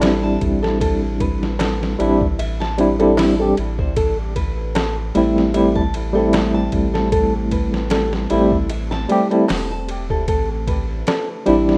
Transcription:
Already playing: A1 G3 C4 D4 E4 A4
0.01 snare, ride, darbuka tek
0.23 A5
0.41 A1, kick, ride
0.63 A4, snare
0.80 A4, kick, ride
1.20 B4, kick, ride
1.43 snare
1.59 A4, snare, ride, darbuka tek
1.83 snare
1.99 A1 G3 C4 D4 E4, ride
2.21 kick
2.39 A1 E5, ride
2.60 A5, snare
2.77 G3 C4 D4 E4, ride
2.99 G3 C4 D4 E4 A4, ride
3.17 E4, snare, open hi-hat, darbuka tek
3.39 G3 C4 D4 G4 A4
3.57 A1, ride
3.79 C5, kick
3.96 A3 C4 G4 A4, kick, ride
4.36 B4, kick, ride
4.75 A4, snare, ride, darbuka tek
5.15 A1 G3 A3 C4 E4, ride
5.38 snare
5.54 G3 A3 C4 E4 E5, ride
5.75 A5, kick
5.94 ride
6.13 G3 A3 C4 A4
6.19 E4
6.33 snare, ride, darbuka tek
6.54 A5
6.72 A1, kick, ride
6.94 A4, snare
7.12 A4, kick, ride
7.51 B4, kick, ride
7.74 snare
7.90 A4, snare, ride, darbuka tek
8.13 snare
8.30 A1 G3 A3 C4 E4, ride
8.52 kick
8.69 E5, ride
8.91 A5, snare
9.09 G3 A3 C4 G4, ride
9.31 G3 A3 C4 E4 A4, ride
9.48 E1, snare, open hi-hat, darbuka tek
9.71 A5
9.89 ride
10.10 A4, kick
10.28 A1 D4 E4 A4, kick, ride
10.67 B4, kick, ride
11.07 A4, snare, ride, darbuka tek
11.46 A1 G3 C4 D4 E4, ride
11.69 snare

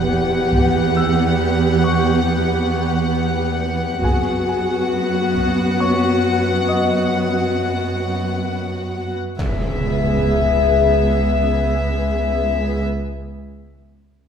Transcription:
Already playing: E2 B3 G4 F#5 F#6, impact
0.52 taiko
0.97 E6
1.84 C#6
4.03 F#1 F#2 B3 F#4 G#4 F#5 G#5, taiko
4.48 G#4 G#5
5.35 taiko
5.80 C#5 C#6
6.68 D#5 D#6
9.39 C#2 B3 G#4 E5, impact

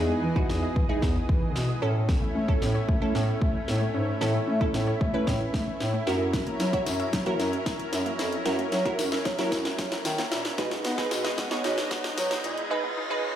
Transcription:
Already playing: E2 E3 B3 D#4 E4 G#4 D#5
0.09 G#3
0.23 E3 D#4
0.36 D#4 E4 F#4, kick
0.49 E2, snare
0.63 D#5
0.76 E3, kick
0.89 G#3 D#4 E4 G#4
1.02 E2 D#4, kick, snare
1.29 E3, kick
1.56 B2, snare
1.69 G#3
1.82 A2 A3 C#4 E4 A4
2.09 E3, kick, snare
2.22 A3
2.35 A3 C#4
2.48 C#4 E4 A4, kick
2.62 A2, snare
2.75 C#5
2.88 E3 A3, kick
3.01 A3 C#4 E4 A4
3.15 A2 C#4, snare
3.41 A3, kick
3.68 A2, snare
3.81 A3
3.94 G#2 C#4
4.21 A2 E3 C#4 E4 A4, snare
4.34 A3
4.48 A3 C#4
4.61 C#4 E4 A4, kick
4.74 A2, snare
4.87 C#5
5.01 E3 A3, kick
5.14 A3 C#4 E4 B4
5.27 A2 C#4, kick, snare
5.54 A3, kick, snare
5.80 A2, snare
5.94 A3
6.07 F#2 F#3 C#4 E4 F#4 A#4, snare
6.33 F#3, kick, snare, closed hi-hat, riser
6.47 A#3, closed hi-hat
6.60 F#3 E4, snare, closed hi-hat, tambourine
6.73 E4 F#4 C#5, kick, closed hi-hat
6.86 F#2, snare, closed hi-hat, tambourine
7.00 E5, closed hi-hat
7.13 F#3, kick, snare, closed hi-hat, tambourine
7.26 F#3 A#3 E4 F#4 A#4, closed hi-hat
7.39 F#2 E4, snare, closed hi-hat, tambourine
7.53 closed hi-hat
7.66 kick, snare, closed hi-hat, tambourine
7.79 closed hi-hat
7.92 F#2, snare, closed hi-hat, tambourine
8.06 A#3, closed hi-hat
8.19 F2 E4, snare, closed hi-hat, tambourine
8.32 closed hi-hat
8.46 F#2 F#3 E4 F#4 A#4, snare, closed hi-hat, tambourine
8.59 A#3, closed hi-hat
8.72 F#3 E4, snare, closed hi-hat, tambourine
8.85 E4 F#4 A#4, kick, closed hi-hat
8.99 F#2, snare, closed hi-hat, tambourine
9.12 E5, snare, closed hi-hat
9.25 F#3, kick, snare, closed hi-hat, tambourine
9.38 F#3 A#3 E4 F#4 A#4, snare, closed hi-hat
9.52 F#2 E4, kick, snare, closed hi-hat, tambourine
9.65 snare, closed hi-hat
9.78 F#3, kick, snare, closed hi-hat, tambourine
9.92 snare, closed hi-hat
10.05 D#3, snare, closed hi-hat, tambourine
10.18 A#3, snare, closed hi-hat
10.32 A#2 E4, snare, closed hi-hat, tambourine
10.45 snare, closed hi-hat
10.58 B2 G#3 B3 D#4 G#4 B4, kick, snare, closed hi-hat
10.71 B3, snare, closed hi-hat
10.84 B3 D#4, snare, closed hi-hat, tambourine
10.98 D#4 G#4 B4, kick, snare, closed hi-hat
11.11 B2, snare, closed hi-hat, tambourine
11.24 D#5, snare, closed hi-hat
11.38 G#3 B3, kick, snare, closed hi-hat, tambourine
11.51 B3 D#4 G#4 C#5, snare, closed hi-hat
11.64 B2 D#4, snare, closed hi-hat, tambourine
11.78 snare, closed hi-hat
11.91 B3, kick, snare, closed hi-hat, tambourine
12.04 snare, closed hi-hat
12.17 F#3, snare, closed hi-hat, tambourine
12.31 B3, snare, closed hi-hat
12.44 A#2 D#4, closed hi-hat, tambourine
12.57 closed hi-hat
12.70 G#3 C#4 D#4 G#4 B4
12.84 B3
12.97 D#4
13.10 D#4 G#4 B4

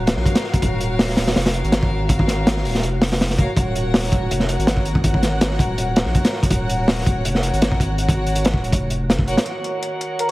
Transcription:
Already playing: D#1 F#4
0.07 F#4 A#4 C#5 F5, snare, closed hi-hat
0.17 A#1, snare
0.26 kick, closed hi-hat
0.35 snare, closed hi-hat
0.44 snare
0.54 kick, closed hi-hat
0.62 D#1 F#4 A#4 C#5 F5, kick, closed hi-hat
0.80 closed hi-hat
0.99 snare, open hi-hat
1.09 snare
1.17 D#1, snare, open hi-hat
1.27 snare, open hi-hat
1.36 F1, snare, open hi-hat
1.46 snare, open hi-hat
1.54 F#4 A#4 C#5 F5, closed hi-hat
1.64 G#1, closed hi-hat
1.72 snare, closed hi-hat
1.83 kick
2.09 F#4 A#4 C#5 F5, kick, closed hi-hat
2.19 kick
2.28 snare, closed hi-hat
2.47 snare, closed hi-hat
2.56 snare
2.65 D#1, open hi-hat
2.75 snare
2.83 F1, closed hi-hat
3.02 snare, open hi-hat
3.12 snare, open hi-hat
3.21 snare, open hi-hat
3.30 snare
3.38 F#4 A#4 C#5 F5, kick, closed hi-hat
3.57 D#1 F#4 A#4 C#5 F#5, kick, closed hi-hat
3.75 closed hi-hat
3.94 snare, open hi-hat
4.03 snare
4.12 D#1, kick, closed hi-hat
4.30 F1, closed hi-hat
4.40 snare
4.48 F#4 A#4 C#5 F#5, closed hi-hat
4.58 G#1, closed hi-hat
4.67 snare, closed hi-hat
4.77 kick
4.85 closed hi-hat
4.95 kick
5.04 F#4 A#4 C#5 F#5, kick, closed hi-hat
5.14 kick
5.23 snare, closed hi-hat
5.41 snare, closed hi-hat
5.51 snare
5.59 D#1, kick, closed hi-hat
5.77 D#1, closed hi-hat
5.96 F#4 A#4 C#5 F#5, snare, closed hi-hat
6.05 A#1, snare
6.15 kick, closed hi-hat
6.25 snare, closed hi-hat
6.33 snare
6.43 kick, closed hi-hat
6.50 D#1 F#4 A#4 C#5 F#5, kick, closed hi-hat
6.69 closed hi-hat
6.88 snare, open hi-hat
6.98 snare
7.06 D#1, kick, closed hi-hat
7.25 F1, closed hi-hat
7.35 snare
7.43 F#4 A#4 C#5 F#5, closed hi-hat
7.53 G#1, closed hi-hat
7.62 snare, closed hi-hat
7.72 kick
7.80 kick, closed hi-hat
7.98 F#4 A#4 C#5 F#5, closed hi-hat
8.09 kick, closed hi-hat
8.27 closed hi-hat
8.35 closed hi-hat
8.45 snare, closed hi-hat
8.54 D#1, kick
8.64 closed hi-hat
8.72 F1, kick, closed hi-hat
8.90 closed hi-hat
9.10 snare, closed hi-hat
9.19 kick
9.27 F#4 A#4 C#5 F#5, closed hi-hat
9.37 snare, closed hi-hat
9.45 D#3 F#4 A#4 C#5 F#5, closed hi-hat
9.64 closed hi-hat
9.83 closed hi-hat
10.01 closed hi-hat
10.19 A#4, closed hi-hat

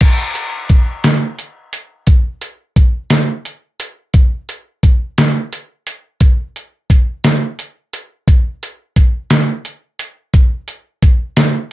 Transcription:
0.01 kick, closed hi-hat, crash
0.35 closed hi-hat
0.69 kick, closed hi-hat
1.04 snare, closed hi-hat
1.39 closed hi-hat
1.73 closed hi-hat
2.07 kick, closed hi-hat
2.41 closed hi-hat
2.76 kick, closed hi-hat
3.10 snare, closed hi-hat
3.45 closed hi-hat
3.80 closed hi-hat
4.14 kick, closed hi-hat
4.49 closed hi-hat
4.83 kick, closed hi-hat
5.18 snare, closed hi-hat
5.53 closed hi-hat
5.87 closed hi-hat
6.21 kick, closed hi-hat
6.56 closed hi-hat
6.90 kick, closed hi-hat
7.24 snare, closed hi-hat
7.59 closed hi-hat
7.93 closed hi-hat
8.28 kick, closed hi-hat
8.63 closed hi-hat
8.96 kick, closed hi-hat
9.30 snare, closed hi-hat
9.65 closed hi-hat
9.99 closed hi-hat
10.34 kick, closed hi-hat
10.68 closed hi-hat
11.02 kick, closed hi-hat
11.37 snare, closed hi-hat

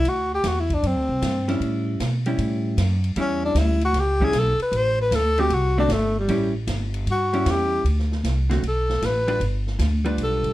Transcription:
Already playing: E4
0.04 D2, ride
0.09 F#4
0.34 G4
0.44 E2 F#4, snare, hi-hat pedal, ride
0.60 E4
0.70 kick, ride
0.74 D4
0.83 F#2, ride
0.87 C4
0.96 D2
1.09 C2
1.22 G2, snare, hi-hat pedal, ride
1.48 G3 C#4 E4, snare, ride
1.60 A2, ride
2.00 B2, snare, hi-hat pedal, ride
2.26 G3 C#4 E4, ride
2.38 A2, ride
2.77 F#2, snare, hi-hat pedal, ride
3.04 ride
3.16 E2 G3 C#4 E4, ride
3.20 C#4
3.45 D4
3.55 D2 E4, snare, hi-hat pedal, ride
3.81 F#4, ride
3.93 C#2, snare, ride
4.00 G4
4.20 G3 C#4 E4, kick
4.25 G#4
4.33 B1, snare, hi-hat pedal, ride
4.39 A4
4.59 B4, muted upright bass stroke, ride
4.72 A1, ride
4.77 C5
5.02 B4
5.11 D2, snare, hi-hat pedal, ride
5.15 A4
5.38 D3 A3 C4 F#4 G4, ride
5.50 C2 F#4, ride
5.78 D3 A3 C4 D4 F#4
5.89 G1 A3, snare, hi-hat pedal, ride
6.19 G3
6.28 A1 G3 C#4 E4, ride
6.67 G1, snare, hi-hat pedal, ride
6.94 ride
7.06 G2, ride
7.11 F#4
7.33 G3 C#4 E4, ride
7.45 E2, snare, hi-hat pedal, ride
7.51 G4
7.84 D2, ride
7.99 snare
8.12 snare
8.24 C2, snare, hi-hat pedal, ride
8.50 D3 A3 C4 F#4, snare, ride
8.63 B1, ride
8.68 A4
8.89 snare
9.01 A1 B4, snare, hi-hat pedal, ride
9.27 G3 D4 F4 B4, ride
9.40 G1, ride
9.67 snare
9.79 D2, snare, hi-hat pedal, ride
10.05 G3 D4 F4 B4, ride
10.18 B1, ride
10.24 A4
10.44 kick, ride

